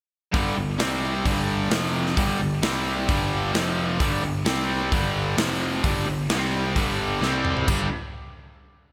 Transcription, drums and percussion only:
0.34 kick loud
0.34 open hi-hat medium
0.80 snare loud
0.80 open hi-hat medium
1.26 kick loud
1.26 open hi-hat medium
1.71 snare loud
1.71 open hi-hat medium
2.06 snare soft
2.17 kick loud
2.17 open hi-hat medium
2.63 snare loud
2.63 open hi-hat medium
3.09 kick loud
3.09 open hi-hat medium
3.55 snare loud
3.55 open hi-hat medium
4.00 kick loud
4.00 open hi-hat medium
4.46 snare loud
4.46 open hi-hat medium
4.92 kick loud
4.92 open hi-hat medium
5.38 snare loud
5.38 open hi-hat medium
5.84 kick loud
5.84 open hi-hat medium
6.30 snare loud
6.30 open hi-hat medium
6.76 kick loud
6.76 open hi-hat medium
7.23 snare medium
7.45 mid tom medium
7.57 floor tom medium
7.68 kick loud
7.68 crash medium

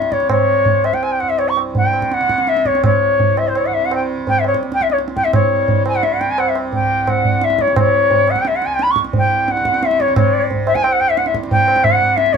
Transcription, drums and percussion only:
0.02 tabla te medium
0.12 tabla ke medium
0.20 tabla te medium
0.29 tabla na loud
0.29 tabla ge medium
0.65 tabla tin medium
0.65 tabla ge medium
0.84 tabla na medium
0.93 tabla ke medium
1.03 tabla na medium
1.20 tabla na medium
1.39 tabla na medium
1.57 tabla na medium
1.75 tabla tin medium
1.75 tabla ge medium
1.93 tabla na medium
2.02 tabla ke medium
2.12 tabla te medium
2.21 tabla te medium
2.29 tabla ke medium
2.38 tabla te medium
2.47 tabla te medium
2.57 tabla te medium
2.65 tabla ke medium
2.75 tabla te medium
2.84 tabla na loud
2.84 tabla ge medium
3.19 tabla tin medium
3.19 tabla ge medium
3.37 tabla na medium
3.55 tabla na medium
3.91 tabla na medium
4.27 tabla tin medium
4.27 tabla ge medium
4.44 tabla na medium
4.54 tabla ke medium
4.63 tabla te medium
4.72 tabla te medium
4.81 tabla ke medium
4.90 tabla te medium
4.98 tabla te medium
5.08 tabla te medium
5.17 tabla ke medium
5.25 tabla te medium
5.33 tabla na loud
5.33 tabla ge medium
5.68 tabla tin medium
5.68 tabla ge medium
5.86 tabla na medium
6.03 tabla te medium
6.21 tabla te medium
6.38 tabla na medium
6.55 tabla na medium
6.73 tabla tin medium
6.73 tabla ge medium
7.07 tabla na medium
7.07 tabla ge medium
7.25 tabla ge medium
7.41 tabla te medium
7.50 tabla te medium
7.59 tabla ke medium
7.68 tabla te medium
7.76 tabla na loud
7.76 tabla ge loud
8.11 tabla tin medium
8.11 tabla ge medium
8.28 tabla na medium
8.36 tabla ke medium
8.45 tabla te medium
8.62 tabla te medium
8.79 tabla te medium
8.87 tabla te medium
8.96 tabla ke medium
9.05 tabla te medium
9.13 tabla tin medium
9.13 tabla ge medium
9.48 tabla te medium
9.57 tabla te medium
9.65 tabla ke medium
9.74 tabla te medium
9.83 tabla te medium
9.91 tabla te medium
10.00 tabla ke medium
10.08 tabla te medium
10.16 tabla na loud
10.16 tabla ge loud
10.51 tabla tin medium
10.51 tabla ge medium
10.67 tabla na medium
10.75 tabla ke medium
10.84 tabla na medium
11.17 tabla te medium
11.26 tabla te medium
11.34 tabla ke medium
11.43 tabla te medium
11.51 tabla tin medium
11.51 tabla ge medium
11.68 tabla na medium
11.76 tabla ke medium
11.84 tabla na medium
11.84 tabla ge medium
12.01 tabla ge medium
12.18 tabla te medium
12.26 tabla te medium

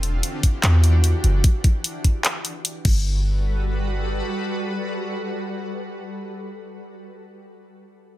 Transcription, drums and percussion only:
0.03 closed hi-hat medium
0.23 closed hi-hat medium
0.43 kick medium
0.43 closed hi-hat medium
0.64 clap loud
0.64 closed hi-hat medium
0.84 closed hi-hat medium
1.04 closed hi-hat medium
1.24 closed hi-hat medium
1.44 kick loud
1.44 closed hi-hat medium
1.64 kick loud
1.64 closed hi-hat medium
1.84 closed hi-hat medium
2.04 kick medium
2.04 closed hi-hat medium
2.25 clap loud
2.25 closed hi-hat medium
2.45 closed hi-hat medium
2.65 closed hi-hat medium
2.85 kick loud
2.85 crash medium

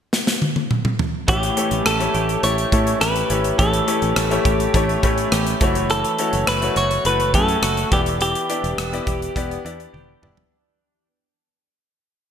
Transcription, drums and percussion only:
0.13 snare medium
0.27 snare medium
0.42 high tom medium
0.56 high tom medium
0.71 mid tom medium
0.85 mid tom medium
0.99 floor tom medium
1.28 kick medium
1.28 closed hi-hat medium
1.43 closed hi-hat soft
1.57 closed hi-hat medium
1.71 closed hi-hat soft
1.86 cross-stick loud
1.86 closed hi-hat medium
2.00 closed hi-hat soft
2.14 closed hi-hat medium
2.29 closed hi-hat soft
2.43 closed hi-hat medium
2.58 closed hi-hat soft
2.72 kick medium
2.72 closed hi-hat medium
2.87 closed hi-hat soft
3.01 cross-stick medium
3.01 closed hi-hat medium
3.16 closed hi-hat soft
3.30 closed hi-hat medium
3.44 closed hi-hat medium
3.59 kick medium
3.59 closed hi-hat medium
3.73 closed hi-hat soft
3.88 closed hi-hat medium
4.02 closed hi-hat soft
4.16 cross-stick loud
4.16 closed hi-hat medium
4.31 closed hi-hat soft
4.45 kick medium
4.45 closed hi-hat medium
4.60 closed hi-hat soft
4.74 kick medium
4.74 closed hi-hat medium
4.89 closed hi-hat soft
5.03 kick medium
5.03 closed hi-hat medium
5.18 closed hi-hat soft
5.32 cross-stick medium
5.32 closed hi-hat medium
5.47 closed hi-hat soft
5.61 kick medium
5.61 closed hi-hat medium
5.75 closed hi-hat medium
5.90 closed hi-hat medium
6.04 closed hi-hat soft
6.19 closed hi-hat medium
6.33 closed hi-hat soft
6.47 cross-stick loud
6.47 closed hi-hat medium
6.62 closed hi-hat soft
6.76 closed hi-hat medium
6.91 closed hi-hat medium
7.05 closed hi-hat medium
7.20 closed hi-hat soft
7.34 kick medium
7.34 closed hi-hat medium
7.48 closed hi-hat soft
7.63 cross-stick medium
7.63 closed hi-hat medium
7.77 closed hi-hat soft
7.92 kick medium
7.92 closed hi-hat medium
8.06 closed hi-hat medium
8.21 closed hi-hat medium
8.35 closed hi-hat soft
8.50 closed hi-hat medium
8.64 closed hi-hat soft
8.78 cross-stick loud
8.78 closed hi-hat medium
8.93 closed hi-hat soft
9.07 kick medium
9.07 closed hi-hat medium
9.22 closed hi-hat soft
9.36 kick medium
9.36 closed hi-hat medium
9.51 closed hi-hat soft
9.66 closed hi-hat medium
9.80 closed hi-hat soft
9.94 high tom soft
10.23 mid tom medium
10.37 floor tom medium

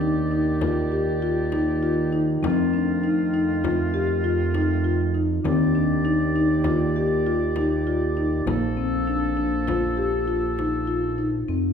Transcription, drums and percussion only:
0.01 frame drum soft
0.61 frame drum medium
0.92 frame drum soft
1.52 frame drum soft
2.13 frame drum soft
2.44 frame drum medium
3.05 frame drum soft
3.64 frame drum medium
3.95 frame drum soft
4.55 frame drum soft
5.15 frame drum soft
5.45 frame drum medium
6.05 frame drum soft
6.64 frame drum medium
6.95 frame drum soft
7.56 frame drum soft
8.17 frame drum soft
8.47 frame drum medium
9.68 frame drum medium
10.59 frame drum soft

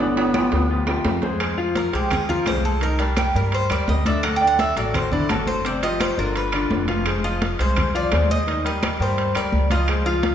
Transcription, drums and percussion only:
0.00 high conga soft
0.17 high conga soft
0.17 high timbale loud
0.34 high conga loud
0.34 high timbale loud
0.34 claves medium
0.52 high conga soft
0.52 low timbale medium
0.70 high conga soft
0.87 high conga soft
0.87 low timbale loud
0.87 claves medium
1.05 high conga medium
1.05 low timbale medium
1.22 high conga medium
1.22 low timbale medium
1.40 high conga soft
1.40 high timbale medium
1.40 claves medium
1.58 high conga soft
1.75 high conga loud
1.75 high timbale medium
1.93 high conga soft
1.93 high timbale medium
2.10 high conga soft
2.10 low conga medium
2.10 high timbale medium
2.10 claves medium
2.29 high conga soft
2.29 low conga medium
2.46 high conga medium
2.46 high timbale medium
2.46 low timbale medium
2.46 claves medium
2.64 high conga medium
2.81 high conga soft
2.81 high timbale medium
2.99 high conga soft
2.99 high timbale medium
3.17 high conga loud
3.17 high timbale medium
3.17 claves medium
3.35 high conga soft
3.52 high conga soft
3.52 high timbale medium
3.70 high conga soft
3.70 high timbale medium
3.70 claves medium
3.88 high conga medium
3.88 low timbale medium
4.06 high conga medium
4.06 high timbale medium
4.23 high conga soft
4.23 high timbale medium
4.23 claves medium
4.41 high conga soft
4.59 high conga loud
4.59 high timbale medium
4.77 high conga soft
4.77 high timbale medium
4.94 high conga soft
4.94 low conga medium
4.94 high timbale medium
4.94 claves medium
5.12 high conga soft
5.12 low conga medium
5.29 high conga medium
5.29 high timbale medium
5.29 low timbale medium
5.29 claves medium
5.47 high conga medium
5.65 high conga soft
5.65 high timbale medium
5.83 high conga soft
5.83 high timbale medium
6.00 high conga loud
6.00 high timbale medium
6.00 claves medium
6.18 high conga soft
6.35 high conga soft
6.35 high timbale medium
6.52 high conga soft
6.52 high timbale medium
6.52 claves medium
6.71 high conga medium
6.71 low timbale medium
6.88 high conga medium
6.88 high timbale medium
7.06 high conga soft
7.06 high timbale medium
7.06 claves medium
7.24 high conga soft
7.42 high conga loud
7.42 high timbale medium
7.59 high conga soft
7.59 high timbale medium
7.76 high conga soft
7.76 low conga medium
7.76 high timbale medium
7.76 claves medium
7.95 high conga soft
8.12 high conga medium
8.12 high timbale medium
8.12 low timbale medium
8.12 claves medium
8.30 high conga medium
8.48 high conga soft
8.48 high timbale medium
8.66 high conga soft
8.66 high timbale medium
8.83 high conga loud
8.83 high timbale loud
8.83 claves medium
9.00 high conga soft
9.18 high conga soft
9.18 high timbale medium
9.35 high conga soft
9.35 high timbale medium
9.35 claves medium
9.52 high conga medium
9.70 high conga medium
9.70 high timbale medium
9.88 high conga soft
9.88 high timbale medium
9.88 claves medium
10.06 high conga soft
10.23 high conga loud
10.23 high timbale medium

